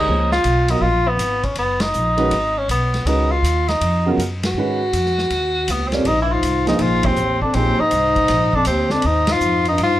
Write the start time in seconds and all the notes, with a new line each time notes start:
Already playing: D#4
0.08 C#2 F3 A#3 D#4 G#4 C#5
0.32 F4, snare
0.44 B1, hi-hat pedal, ride
0.68 F#3 B3 D#4 F4 A#4 D#5, ride
0.81 A#1 F4
1.08 B3
1.17 G#1, hi-hat pedal, ride
1.43 C#4, kick, ride
1.55 F#1 B3, ride
1.80 D#4, snare, ride
1.93 A#1, hi-hat pedal
2.17 D#3 G#3 C#4 F#4 B4, ride
2.31 G#1, ride
2.58 C#4
2.68 B1 B3, hi-hat pedal, ride
2.94 snare, ride
3.05 C#2 D#3 G#3 C#4 D#4 F#4 B4, ride
3.31 F4
3.43 D#2, hi-hat pedal, ride
3.68 D#4, snare, ride
3.81 F2, ride
4.06 C#3 F#3 B3 F4 A#4
4.17 F#2, hi-hat pedal, ride
4.43 F#4, snare, ride
4.54 G#2 D#3 C#4
4.58 G#3 F#4 B4
4.93 F2, hi-hat pedal, ride
5.06 snare
5.18 snare
5.30 D#2, ride
5.68 C#2 D#2 B3, hi-hat pedal, ride
5.87 D#2 C4
5.92 F2 G3 C4 C#4 F4 A#4 D5, snare, ride
6.05 A#1 G#2 D#4, ride
6.22 G2 E4
6.32 G#2 F4
6.42 C2, hi-hat pedal, ride
6.67 G2 F3 A#3 D#4 G#4 C5, snare, ride
6.79 A#1 G#2 F4, ride
7.03 C4, kick, ride
7.07 D#2
7.16 A1, hi-hat pedal
7.41 F2 D4, kick
7.54 A#1 D#2 F3 A#3 C4 D#4 G#4 C5, ride
7.80 G#2 D#4, muted upright bass stroke
7.91 C2, hi-hat pedal, ride
8.16 kick, ride
8.28 A#1, snare, ride
8.53 F2 D4, kick
8.65 D2 D#2 C4, hi-hat pedal, ride
8.90 F2 D4, snare
9.02 D#2 D#4, ride
9.07 G#2
9.27 snare, ride
9.31 G#2 F4
9.40 F2, hi-hat pedal
9.65 G2 D#4, ride
9.78 G2 G#2, ride
9.84 F4